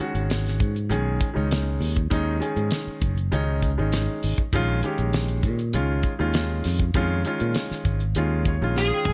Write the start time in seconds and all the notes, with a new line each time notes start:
0.00 D#3 G#3 C#4 F#4
0.15 G#1, closed hi-hat
0.30 snare, closed hi-hat
0.46 snare, closed hi-hat
0.60 G#2, kick, closed hi-hat
0.76 closed hi-hat
0.89 B1 D#3 G#3 C#4 G#4, closed hi-hat
1.21 kick, closed hi-hat
1.33 C#2 D#3 G#3 C#4 D#4
1.51 snare, closed hi-hat
1.81 D#2, open hi-hat
1.96 kick, closed hi-hat
2.10 D#2 D#3 G#3 C#4 D#4, kick, closed hi-hat
2.40 D#3 G#3 C#4 G#4, closed hi-hat
2.56 G#2, closed hi-hat
2.71 snare, closed hi-hat
2.87 muted fingered electric bass stroke
3.02 F#1, kick, closed hi-hat
3.18 closed hi-hat
3.32 C#2 D#3 G#3 C#4 D#4, closed hi-hat
3.62 kick, closed hi-hat
3.78 G#1 D#3 G#3 C#4 D#4
3.92 snare, closed hi-hat
4.23 G#1, open hi-hat
4.38 kick, closed hi-hat
4.53 A#1 D#3 G#3 C#4 F4, kick, closed hi-hat
4.83 D#3 G#3 C#4 G4, closed hi-hat
4.98 A#1, closed hi-hat
5.13 snare, closed hi-hat
5.28 closed hi-hat
5.43 A#2, kick, closed hi-hat
5.59 closed hi-hat
5.73 C#2 D#3 G#3 C#4 F4, closed hi-hat
6.03 kick, closed hi-hat
6.19 D#2 D#3 G#3 C#4 F4
6.34 snare, closed hi-hat
6.64 F2, snare, open hi-hat
6.79 kick, closed hi-hat
6.94 F2 D#3 G#3 C#4 F4, kick, closed hi-hat
7.25 D#3 G#3 C#4 F4, closed hi-hat
7.40 A#2, closed hi-hat
7.55 snare, closed hi-hat
7.71 muted fingered electric bass stroke, snare
7.85 G#1, kick, closed hi-hat
8.00 closed hi-hat
8.15 D#2 D#3 G#3 C#4 F4, closed hi-hat
8.45 C#5, kick, closed hi-hat
8.62 A#1 D#3 G#3 C#4 F4
8.76 G#4 F5, snare
8.94 G5
9.05 A#1 G#5, mid tom